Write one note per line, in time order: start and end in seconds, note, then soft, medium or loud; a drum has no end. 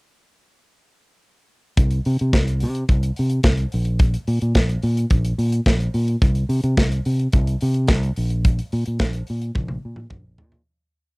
1.77 1.99 C2 loud
1.77 kick loud
1.77 closed hi-hat medium
1.90 closed hi-hat soft
2.05 2.16 C3 medium
2.05 open hi-hat medium
2.19 2.31 C3 medium
2.19 closed hi-hat soft
2.33 2.64 C2 medium
2.33 kick loud
2.33 snare loud
2.33 closed hi-hat medium
2.47 closed hi-hat medium
2.60 2.83 C3 loud
2.60 open hi-hat medium
2.75 closed hi-hat soft
2.88 3.10 C2 loud
2.88 kick loud
2.88 closed hi-hat medium
3.03 closed hi-hat medium
3.16 3.39 C3 medium
3.16 open hi-hat medium
3.30 closed hi-hat soft
3.43 3.65 C2 medium
3.43 kick loud
3.43 snare loud
3.43 closed hi-hat medium
3.57 closed hi-hat soft
3.72 4.15 A#1 medium
3.72 open hi-hat medium
3.85 closed hi-hat medium
3.99 kick loud
3.99 closed hi-hat medium
4.14 closed hi-hat soft
4.27 4.38 A#2 medium
4.27 open hi-hat medium
4.42 4.52 A#2 medium
4.42 closed hi-hat medium
4.55 4.76 A#1 medium
4.55 kick loud
4.55 snare loud
4.55 closed hi-hat medium
4.69 closed hi-hat soft
4.82 5.04 A#2 loud
4.82 open hi-hat medium
4.97 closed hi-hat soft
5.10 5.32 A#1 loud
5.10 kick medium
5.10 closed hi-hat medium
5.25 closed hi-hat medium
5.38 5.59 A#2 medium
5.38 open hi-hat medium
5.52 closed hi-hat soft
5.66 5.88 A#1 medium
5.66 kick loud
5.66 snare loud
5.66 closed hi-hat medium
5.80 closed hi-hat soft
5.94 6.15 A#2 medium
5.94 open hi-hat medium
6.08 closed hi-hat soft
6.22 6.43 C2 loud
6.22 kick loud
6.22 closed hi-hat medium
6.35 closed hi-hat soft
6.49 6.60 C3 loud
6.49 open hi-hat medium
6.64 6.74 C3 loud
6.64 closed hi-hat soft
6.77 6.99 C2 medium
6.77 kick loud
6.77 snare loud
6.77 closed hi-hat medium
6.92 closed hi-hat medium
7.05 7.27 C3 medium
7.05 open hi-hat medium
7.20 closed hi-hat soft
7.32 7.55 C2 loud
7.32 kick loud
7.32 closed hi-hat medium
7.47 closed hi-hat soft
7.61 7.91 C3 loud
7.61 open hi-hat medium
7.74 closed hi-hat soft
7.87 8.10 C2 medium
7.87 kick loud
7.87 snare loud
7.87 closed hi-hat medium
8.03 closed hi-hat soft
8.16 8.59 A#1 medium
8.16 open hi-hat medium
8.30 closed hi-hat soft
8.45 kick loud
8.45 closed hi-hat medium
8.59 closed hi-hat soft
8.72 8.83 A#2 medium
8.72 open hi-hat medium
8.86 8.97 A#2 medium
8.86 closed hi-hat medium
8.99 9.21 A#1 loud
8.99 kick loud
8.99 snare loud
8.99 closed hi-hat medium
9.13 closed hi-hat soft
9.27 9.50 A#2 medium
9.27 open hi-hat medium
9.42 closed hi-hat soft
9.55 9.77 A#1 loud
9.55 kick loud
9.55 high tom medium
9.68 high tom soft
9.85 10.05 A#2 medium
9.96 mid tom medium
10.10 10.41 A#1 loud
10.10 kick medium
10.10 mid tom medium
10.38 10.61 A#2 medium
10.38 floor tom medium
10.52 floor tom medium